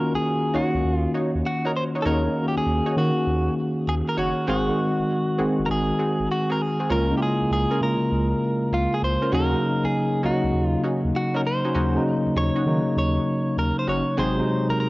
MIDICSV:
0, 0, Header, 1, 5, 480
1, 0, Start_track
1, 0, Tempo, 606061
1, 1626, Time_signature, 4, 2, 24, 8
1, 11795, End_track
2, 0, Start_track
2, 0, Title_t, "Clean electric guitar"
2, 0, Program_c, 0, 27
2, 0, Note_on_c, 0, 70, 98
2, 118, Note_off_c, 0, 70, 0
2, 121, Note_on_c, 0, 68, 81
2, 440, Note_on_c, 0, 66, 74
2, 443, Note_off_c, 0, 68, 0
2, 757, Note_off_c, 0, 66, 0
2, 757, Note_on_c, 0, 65, 74
2, 882, Note_off_c, 0, 65, 0
2, 1159, Note_on_c, 0, 66, 94
2, 1302, Note_off_c, 0, 66, 0
2, 1319, Note_on_c, 0, 70, 92
2, 1352, Note_off_c, 0, 70, 0
2, 1398, Note_on_c, 0, 72, 104
2, 1451, Note_off_c, 0, 72, 0
2, 1603, Note_on_c, 0, 69, 80
2, 1633, Note_off_c, 0, 69, 0
2, 1638, Note_on_c, 0, 70, 98
2, 1962, Note_off_c, 0, 70, 0
2, 1965, Note_on_c, 0, 67, 66
2, 2033, Note_off_c, 0, 67, 0
2, 2040, Note_on_c, 0, 68, 88
2, 2358, Note_off_c, 0, 68, 0
2, 2361, Note_on_c, 0, 66, 69
2, 2802, Note_off_c, 0, 66, 0
2, 3080, Note_on_c, 0, 68, 87
2, 3121, Note_off_c, 0, 68, 0
2, 3238, Note_on_c, 0, 70, 78
2, 3315, Note_off_c, 0, 70, 0
2, 3318, Note_on_c, 0, 66, 78
2, 3551, Note_off_c, 0, 66, 0
2, 3560, Note_on_c, 0, 66, 80
2, 4478, Note_off_c, 0, 66, 0
2, 4481, Note_on_c, 0, 70, 68
2, 4512, Note_off_c, 0, 70, 0
2, 4521, Note_on_c, 0, 68, 82
2, 4997, Note_off_c, 0, 68, 0
2, 5000, Note_on_c, 0, 66, 91
2, 5158, Note_off_c, 0, 66, 0
2, 5161, Note_on_c, 0, 70, 91
2, 5240, Note_off_c, 0, 70, 0
2, 5240, Note_on_c, 0, 68, 88
2, 5475, Note_off_c, 0, 68, 0
2, 5479, Note_on_c, 0, 70, 100
2, 5678, Note_off_c, 0, 70, 0
2, 5682, Note_on_c, 0, 67, 70
2, 5712, Note_off_c, 0, 67, 0
2, 5721, Note_on_c, 0, 68, 93
2, 5952, Note_off_c, 0, 68, 0
2, 5961, Note_on_c, 0, 68, 95
2, 6198, Note_off_c, 0, 68, 0
2, 6201, Note_on_c, 0, 70, 99
2, 6921, Note_on_c, 0, 65, 86
2, 6935, Note_off_c, 0, 70, 0
2, 7078, Note_off_c, 0, 65, 0
2, 7081, Note_on_c, 0, 68, 84
2, 7156, Note_off_c, 0, 68, 0
2, 7163, Note_on_c, 0, 72, 96
2, 7399, Note_off_c, 0, 72, 0
2, 7402, Note_on_c, 0, 70, 97
2, 7801, Note_on_c, 0, 68, 87
2, 7806, Note_off_c, 0, 70, 0
2, 8092, Note_off_c, 0, 68, 0
2, 8123, Note_on_c, 0, 66, 82
2, 8440, Note_off_c, 0, 66, 0
2, 8440, Note_on_c, 0, 65, 82
2, 8563, Note_off_c, 0, 65, 0
2, 8842, Note_on_c, 0, 66, 83
2, 8999, Note_off_c, 0, 66, 0
2, 9002, Note_on_c, 0, 70, 88
2, 9034, Note_off_c, 0, 70, 0
2, 9082, Note_on_c, 0, 72, 93
2, 9522, Note_off_c, 0, 72, 0
2, 9802, Note_on_c, 0, 73, 99
2, 10273, Note_off_c, 0, 73, 0
2, 10283, Note_on_c, 0, 73, 88
2, 10757, Note_off_c, 0, 73, 0
2, 10760, Note_on_c, 0, 70, 91
2, 10917, Note_off_c, 0, 70, 0
2, 10920, Note_on_c, 0, 72, 87
2, 10995, Note_off_c, 0, 72, 0
2, 11001, Note_on_c, 0, 73, 99
2, 11236, Note_off_c, 0, 73, 0
2, 11239, Note_on_c, 0, 72, 95
2, 11638, Note_off_c, 0, 72, 0
2, 11641, Note_on_c, 0, 70, 89
2, 11711, Note_off_c, 0, 70, 0
2, 11721, Note_on_c, 0, 70, 106
2, 11795, Note_off_c, 0, 70, 0
2, 11795, End_track
3, 0, Start_track
3, 0, Title_t, "Analog polysynth"
3, 0, Program_c, 1, 90
3, 424, Note_on_c, 1, 63, 81
3, 427, Note_on_c, 1, 66, 72
3, 429, Note_on_c, 1, 73, 85
3, 557, Note_off_c, 1, 63, 0
3, 558, Note_off_c, 1, 66, 0
3, 559, Note_off_c, 1, 73, 0
3, 904, Note_on_c, 1, 63, 76
3, 907, Note_on_c, 1, 66, 66
3, 909, Note_on_c, 1, 73, 82
3, 1037, Note_off_c, 1, 63, 0
3, 1038, Note_off_c, 1, 66, 0
3, 1039, Note_off_c, 1, 73, 0
3, 1305, Note_on_c, 1, 63, 73
3, 1308, Note_on_c, 1, 66, 72
3, 1310, Note_on_c, 1, 73, 84
3, 1371, Note_off_c, 1, 63, 0
3, 1373, Note_off_c, 1, 66, 0
3, 1374, Note_off_c, 1, 73, 0
3, 1545, Note_on_c, 1, 63, 76
3, 1547, Note_on_c, 1, 66, 65
3, 1550, Note_on_c, 1, 73, 76
3, 1611, Note_off_c, 1, 63, 0
3, 1613, Note_off_c, 1, 66, 0
3, 1614, Note_off_c, 1, 73, 0
3, 1624, Note_on_c, 1, 63, 96
3, 1626, Note_on_c, 1, 66, 83
3, 1629, Note_on_c, 1, 73, 102
3, 1852, Note_off_c, 1, 63, 0
3, 1854, Note_off_c, 1, 66, 0
3, 1855, Note_off_c, 1, 73, 0
3, 2264, Note_on_c, 1, 63, 76
3, 2266, Note_on_c, 1, 66, 72
3, 2268, Note_on_c, 1, 73, 82
3, 2331, Note_off_c, 1, 63, 0
3, 2332, Note_off_c, 1, 66, 0
3, 2333, Note_off_c, 1, 73, 0
3, 3303, Note_on_c, 1, 63, 78
3, 3306, Note_on_c, 1, 66, 75
3, 3308, Note_on_c, 1, 73, 91
3, 3436, Note_off_c, 1, 63, 0
3, 3438, Note_off_c, 1, 66, 0
3, 3439, Note_off_c, 1, 73, 0
3, 3543, Note_on_c, 1, 60, 99
3, 3546, Note_on_c, 1, 66, 85
3, 3548, Note_on_c, 1, 68, 102
3, 3772, Note_off_c, 1, 60, 0
3, 3773, Note_off_c, 1, 66, 0
3, 3774, Note_off_c, 1, 68, 0
3, 4262, Note_on_c, 1, 60, 75
3, 4264, Note_on_c, 1, 66, 69
3, 4267, Note_on_c, 1, 68, 84
3, 4396, Note_off_c, 1, 60, 0
3, 4397, Note_off_c, 1, 66, 0
3, 4398, Note_off_c, 1, 68, 0
3, 4743, Note_on_c, 1, 60, 80
3, 4744, Note_on_c, 1, 66, 68
3, 4747, Note_on_c, 1, 68, 77
3, 4876, Note_off_c, 1, 60, 0
3, 4877, Note_off_c, 1, 66, 0
3, 4878, Note_off_c, 1, 68, 0
3, 5143, Note_on_c, 1, 60, 75
3, 5145, Note_on_c, 1, 66, 69
3, 5148, Note_on_c, 1, 68, 82
3, 5210, Note_off_c, 1, 60, 0
3, 5212, Note_off_c, 1, 66, 0
3, 5213, Note_off_c, 1, 68, 0
3, 5382, Note_on_c, 1, 60, 72
3, 5384, Note_on_c, 1, 66, 65
3, 5386, Note_on_c, 1, 68, 78
3, 5450, Note_off_c, 1, 60, 0
3, 5451, Note_off_c, 1, 66, 0
3, 5452, Note_off_c, 1, 68, 0
3, 5462, Note_on_c, 1, 61, 93
3, 5464, Note_on_c, 1, 65, 84
3, 5466, Note_on_c, 1, 70, 103
3, 5691, Note_off_c, 1, 61, 0
3, 5693, Note_off_c, 1, 65, 0
3, 5693, Note_off_c, 1, 70, 0
3, 6102, Note_on_c, 1, 61, 73
3, 6104, Note_on_c, 1, 65, 69
3, 6108, Note_on_c, 1, 70, 89
3, 6170, Note_off_c, 1, 61, 0
3, 6171, Note_off_c, 1, 65, 0
3, 6173, Note_off_c, 1, 70, 0
3, 7302, Note_on_c, 1, 61, 72
3, 7304, Note_on_c, 1, 65, 70
3, 7306, Note_on_c, 1, 70, 78
3, 7370, Note_off_c, 1, 61, 0
3, 7371, Note_off_c, 1, 65, 0
3, 7372, Note_off_c, 1, 70, 0
3, 7382, Note_on_c, 1, 61, 102
3, 7384, Note_on_c, 1, 63, 86
3, 7387, Note_on_c, 1, 66, 106
3, 7612, Note_off_c, 1, 61, 0
3, 7613, Note_off_c, 1, 63, 0
3, 7614, Note_off_c, 1, 66, 0
3, 8102, Note_on_c, 1, 61, 77
3, 8104, Note_on_c, 1, 63, 69
3, 8107, Note_on_c, 1, 66, 84
3, 8236, Note_off_c, 1, 61, 0
3, 8237, Note_off_c, 1, 63, 0
3, 8238, Note_off_c, 1, 66, 0
3, 8583, Note_on_c, 1, 61, 79
3, 8585, Note_on_c, 1, 63, 70
3, 8588, Note_on_c, 1, 66, 84
3, 8716, Note_off_c, 1, 61, 0
3, 8718, Note_off_c, 1, 63, 0
3, 8719, Note_off_c, 1, 66, 0
3, 8984, Note_on_c, 1, 61, 77
3, 8987, Note_on_c, 1, 63, 67
3, 8988, Note_on_c, 1, 66, 88
3, 9051, Note_off_c, 1, 61, 0
3, 9052, Note_off_c, 1, 63, 0
3, 9053, Note_off_c, 1, 66, 0
3, 9224, Note_on_c, 1, 61, 73
3, 9225, Note_on_c, 1, 63, 67
3, 9228, Note_on_c, 1, 66, 76
3, 9291, Note_off_c, 1, 61, 0
3, 9292, Note_off_c, 1, 63, 0
3, 9293, Note_off_c, 1, 66, 0
3, 9303, Note_on_c, 1, 61, 93
3, 9305, Note_on_c, 1, 63, 86
3, 9307, Note_on_c, 1, 66, 102
3, 9532, Note_off_c, 1, 61, 0
3, 9533, Note_off_c, 1, 63, 0
3, 9534, Note_off_c, 1, 66, 0
3, 9943, Note_on_c, 1, 61, 77
3, 9945, Note_on_c, 1, 63, 70
3, 9947, Note_on_c, 1, 66, 84
3, 10011, Note_off_c, 1, 61, 0
3, 10012, Note_off_c, 1, 63, 0
3, 10013, Note_off_c, 1, 66, 0
3, 10984, Note_on_c, 1, 61, 77
3, 10986, Note_on_c, 1, 63, 71
3, 10988, Note_on_c, 1, 66, 84
3, 11117, Note_off_c, 1, 61, 0
3, 11118, Note_off_c, 1, 63, 0
3, 11119, Note_off_c, 1, 66, 0
3, 11223, Note_on_c, 1, 60, 94
3, 11225, Note_on_c, 1, 66, 84
3, 11228, Note_on_c, 1, 68, 111
3, 11452, Note_off_c, 1, 60, 0
3, 11453, Note_off_c, 1, 66, 0
3, 11454, Note_off_c, 1, 68, 0
3, 11795, End_track
4, 0, Start_track
4, 0, Title_t, "Tine electric piano"
4, 0, Program_c, 2, 4
4, 0, Control_c, 2, 64, 127
4, 0, Note_on_c, 2, 51, 74
4, 0, Note_on_c, 2, 58, 69
4, 0, Note_on_c, 2, 61, 69
4, 0, Note_on_c, 2, 65, 68
4, 0, Note_on_c, 2, 66, 85
4, 370, Note_off_c, 2, 51, 0
4, 372, Note_off_c, 2, 58, 0
4, 373, Note_off_c, 2, 61, 0
4, 401, Note_off_c, 2, 66, 0
4, 428, Note_on_c, 2, 51, 66
4, 431, Note_on_c, 2, 58, 64
4, 434, Note_on_c, 2, 61, 59
4, 438, Note_on_c, 2, 66, 74
4, 1285, Note_off_c, 2, 51, 0
4, 1286, Note_off_c, 2, 58, 0
4, 1287, Note_off_c, 2, 61, 0
4, 1289, Note_off_c, 2, 66, 0
4, 1629, Note_on_c, 2, 51, 73
4, 1632, Note_on_c, 2, 58, 66
4, 1635, Note_on_c, 2, 61, 65
4, 1638, Note_on_c, 2, 68, 77
4, 1765, Note_off_c, 2, 51, 0
4, 1767, Note_off_c, 2, 58, 0
4, 1768, Note_off_c, 2, 61, 0
4, 1769, Note_off_c, 2, 68, 0
4, 1788, Note_on_c, 2, 51, 77
4, 1791, Note_on_c, 2, 58, 69
4, 1794, Note_on_c, 2, 61, 68
4, 1797, Note_on_c, 2, 66, 80
4, 2290, Note_off_c, 2, 51, 0
4, 2292, Note_off_c, 2, 58, 0
4, 2293, Note_off_c, 2, 61, 0
4, 2295, Note_off_c, 2, 66, 0
4, 2349, Note_on_c, 2, 51, 74
4, 2351, Note_on_c, 2, 58, 59
4, 2355, Note_on_c, 2, 61, 58
4, 2357, Note_on_c, 2, 66, 74
4, 3205, Note_off_c, 2, 51, 0
4, 3206, Note_off_c, 2, 58, 0
4, 3208, Note_off_c, 2, 61, 0
4, 3209, Note_off_c, 2, 66, 0
4, 3549, Note_on_c, 2, 51, 68
4, 3552, Note_on_c, 2, 56, 66
4, 3556, Note_on_c, 2, 60, 62
4, 3557, Note_off_c, 2, 65, 0
4, 3557, Control_c, 2, 64, 0
4, 3559, Note_on_c, 2, 66, 86
4, 3674, Control_c, 2, 64, 127
4, 3685, Note_off_c, 2, 51, 0
4, 3686, Note_off_c, 2, 56, 0
4, 3688, Note_off_c, 2, 60, 0
4, 3690, Note_off_c, 2, 66, 0
4, 3710, Note_on_c, 2, 51, 73
4, 3713, Note_on_c, 2, 56, 68
4, 3716, Note_on_c, 2, 60, 64
4, 3719, Note_on_c, 2, 66, 86
4, 4211, Note_off_c, 2, 51, 0
4, 4213, Note_off_c, 2, 56, 0
4, 4214, Note_off_c, 2, 60, 0
4, 4216, Note_off_c, 2, 66, 0
4, 4269, Note_on_c, 2, 51, 88
4, 4272, Note_on_c, 2, 56, 72
4, 4275, Note_on_c, 2, 60, 76
4, 4278, Note_on_c, 2, 66, 87
4, 5125, Note_off_c, 2, 51, 0
4, 5127, Note_off_c, 2, 56, 0
4, 5128, Note_off_c, 2, 60, 0
4, 5129, Note_off_c, 2, 66, 0
4, 5468, Note_on_c, 2, 49, 73
4, 5471, Note_on_c, 2, 56, 65
4, 5474, Note_on_c, 2, 58, 68
4, 5476, Control_c, 2, 64, 0
4, 5477, Note_on_c, 2, 65, 80
4, 5605, Note_off_c, 2, 49, 0
4, 5606, Note_off_c, 2, 56, 0
4, 5607, Note_off_c, 2, 58, 0
4, 5609, Note_off_c, 2, 65, 0
4, 5629, Note_on_c, 2, 49, 77
4, 5631, Note_on_c, 2, 56, 72
4, 5632, Control_c, 2, 64, 127
4, 5634, Note_on_c, 2, 58, 71
4, 5637, Note_on_c, 2, 64, 68
4, 5666, Note_off_c, 2, 64, 0
4, 5689, Note_on_c, 2, 65, 78
4, 6130, Note_off_c, 2, 49, 0
4, 6131, Note_off_c, 2, 56, 0
4, 6133, Note_off_c, 2, 58, 0
4, 6161, Note_off_c, 2, 65, 0
4, 6189, Note_on_c, 2, 49, 70
4, 6192, Note_on_c, 2, 56, 60
4, 6195, Note_on_c, 2, 58, 69
4, 6199, Note_on_c, 2, 65, 78
4, 7045, Note_off_c, 2, 49, 0
4, 7046, Note_off_c, 2, 56, 0
4, 7048, Note_off_c, 2, 58, 0
4, 7050, Note_off_c, 2, 65, 0
4, 7390, Note_on_c, 2, 49, 73
4, 7393, Note_on_c, 2, 54, 63
4, 7396, Note_on_c, 2, 58, 67
4, 7397, Control_c, 2, 64, 0
4, 7398, Note_on_c, 2, 63, 82
4, 7525, Note_off_c, 2, 49, 0
4, 7527, Note_off_c, 2, 54, 0
4, 7528, Note_off_c, 2, 58, 0
4, 7530, Note_off_c, 2, 63, 0
4, 7550, Note_on_c, 2, 49, 78
4, 7552, Control_c, 2, 64, 127
4, 7553, Note_on_c, 2, 54, 72
4, 7556, Note_on_c, 2, 58, 68
4, 7559, Note_on_c, 2, 63, 84
4, 8051, Note_off_c, 2, 49, 0
4, 8053, Note_off_c, 2, 54, 0
4, 8054, Note_off_c, 2, 58, 0
4, 8055, Note_off_c, 2, 63, 0
4, 8110, Note_on_c, 2, 49, 70
4, 8112, Note_on_c, 2, 54, 66
4, 8116, Note_on_c, 2, 58, 65
4, 8119, Note_on_c, 2, 63, 77
4, 8965, Note_off_c, 2, 49, 0
4, 8966, Note_off_c, 2, 54, 0
4, 8968, Note_off_c, 2, 58, 0
4, 8970, Note_off_c, 2, 63, 0
4, 9309, Note_on_c, 2, 49, 74
4, 9313, Note_on_c, 2, 54, 70
4, 9316, Note_on_c, 2, 58, 61
4, 9319, Note_on_c, 2, 63, 79
4, 9445, Note_off_c, 2, 49, 0
4, 9447, Note_off_c, 2, 54, 0
4, 9448, Note_off_c, 2, 58, 0
4, 9450, Note_off_c, 2, 63, 0
4, 9470, Note_on_c, 2, 49, 77
4, 9473, Note_on_c, 2, 54, 74
4, 9477, Note_on_c, 2, 58, 65
4, 9479, Note_on_c, 2, 63, 82
4, 9971, Note_off_c, 2, 49, 0
4, 9972, Note_off_c, 2, 54, 0
4, 9975, Note_off_c, 2, 58, 0
4, 9976, Note_off_c, 2, 63, 0
4, 10029, Note_on_c, 2, 49, 68
4, 10033, Note_on_c, 2, 54, 61
4, 10036, Note_on_c, 2, 58, 68
4, 10039, Note_on_c, 2, 63, 76
4, 10885, Note_off_c, 2, 49, 0
4, 10887, Note_off_c, 2, 54, 0
4, 10888, Note_off_c, 2, 58, 0
4, 10890, Note_off_c, 2, 63, 0
4, 11229, Note_on_c, 2, 48, 67
4, 11233, Note_on_c, 2, 54, 69
4, 11236, Note_on_c, 2, 56, 63
4, 11237, Control_c, 2, 64, 0
4, 11239, Note_on_c, 2, 63, 77
4, 11362, Control_c, 2, 64, 127
4, 11365, Note_off_c, 2, 48, 0
4, 11367, Note_off_c, 2, 54, 0
4, 11368, Note_off_c, 2, 56, 0
4, 11370, Note_off_c, 2, 63, 0
4, 11389, Note_on_c, 2, 48, 76
4, 11393, Note_on_c, 2, 54, 70
4, 11397, Note_on_c, 2, 56, 70
4, 11400, Note_on_c, 2, 63, 85
4, 11795, Note_off_c, 2, 48, 0
4, 11795, Note_off_c, 2, 54, 0
4, 11795, Note_off_c, 2, 56, 0
4, 11795, Note_off_c, 2, 63, 0
4, 11795, End_track
5, 0, Start_track
5, 0, Title_t, "Analog synth bass"
5, 0, Program_c, 3, 38
5, 108, Note_on_c, 3, 37, 51
5, 139, Note_off_c, 3, 37, 0
5, 427, Note_on_c, 3, 37, 48
5, 491, Note_off_c, 3, 37, 0
5, 588, Note_on_c, 3, 37, 87
5, 647, Note_off_c, 3, 37, 0
5, 668, Note_on_c, 3, 39, 104
5, 845, Note_off_c, 3, 39, 0
5, 1068, Note_on_c, 3, 39, 82
5, 1127, Note_off_c, 3, 39, 0
5, 1628, Note_on_c, 3, 39, 100
5, 1805, Note_off_c, 3, 39, 0
5, 2028, Note_on_c, 3, 39, 48
5, 2060, Note_off_c, 3, 39, 0
5, 2109, Note_on_c, 3, 39, 102
5, 2226, Note_off_c, 3, 39, 0
5, 2349, Note_on_c, 3, 51, 96
5, 2467, Note_off_c, 3, 51, 0
5, 2588, Note_on_c, 3, 39, 96
5, 2765, Note_off_c, 3, 39, 0
5, 3068, Note_on_c, 3, 39, 82
5, 3186, Note_off_c, 3, 39, 0
5, 3308, Note_on_c, 3, 30, 88
5, 3426, Note_off_c, 3, 30, 0
5, 3549, Note_on_c, 3, 32, 104
5, 3726, Note_off_c, 3, 32, 0
5, 3950, Note_on_c, 3, 30, 52
5, 3981, Note_off_c, 3, 30, 0
5, 4268, Note_on_c, 3, 30, 47
5, 4332, Note_off_c, 3, 30, 0
5, 4427, Note_on_c, 3, 30, 89
5, 4486, Note_off_c, 3, 30, 0
5, 4508, Note_on_c, 3, 32, 100
5, 4685, Note_off_c, 3, 32, 0
5, 4907, Note_on_c, 3, 32, 89
5, 4966, Note_off_c, 3, 32, 0
5, 5466, Note_on_c, 3, 37, 107
5, 5644, Note_off_c, 3, 37, 0
5, 5868, Note_on_c, 3, 37, 51
5, 5900, Note_off_c, 3, 37, 0
5, 5947, Note_on_c, 3, 37, 94
5, 6065, Note_off_c, 3, 37, 0
5, 6188, Note_on_c, 3, 49, 101
5, 6306, Note_off_c, 3, 49, 0
5, 6428, Note_on_c, 3, 37, 105
5, 6605, Note_off_c, 3, 37, 0
5, 6907, Note_on_c, 3, 37, 88
5, 7025, Note_off_c, 3, 37, 0
5, 7147, Note_on_c, 3, 37, 92
5, 7265, Note_off_c, 3, 37, 0
5, 7388, Note_on_c, 3, 39, 117
5, 7565, Note_off_c, 3, 39, 0
5, 7788, Note_on_c, 3, 37, 51
5, 7820, Note_off_c, 3, 37, 0
5, 8108, Note_on_c, 3, 37, 49
5, 8171, Note_off_c, 3, 37, 0
5, 8269, Note_on_c, 3, 37, 88
5, 8327, Note_off_c, 3, 37, 0
5, 8348, Note_on_c, 3, 39, 100
5, 8525, Note_off_c, 3, 39, 0
5, 8748, Note_on_c, 3, 39, 92
5, 8806, Note_off_c, 3, 39, 0
5, 9308, Note_on_c, 3, 39, 105
5, 9485, Note_off_c, 3, 39, 0
5, 9708, Note_on_c, 3, 39, 52
5, 9739, Note_off_c, 3, 39, 0
5, 9788, Note_on_c, 3, 39, 104
5, 9906, Note_off_c, 3, 39, 0
5, 10029, Note_on_c, 3, 51, 91
5, 10147, Note_off_c, 3, 51, 0
5, 10269, Note_on_c, 3, 39, 103
5, 10446, Note_off_c, 3, 39, 0
5, 10747, Note_on_c, 3, 39, 78
5, 10866, Note_off_c, 3, 39, 0
5, 10989, Note_on_c, 3, 30, 89
5, 11106, Note_off_c, 3, 30, 0
5, 11230, Note_on_c, 3, 32, 107
5, 11407, Note_off_c, 3, 32, 0
5, 11630, Note_on_c, 3, 30, 49
5, 11661, Note_off_c, 3, 30, 0
5, 11795, End_track
0, 0, End_of_file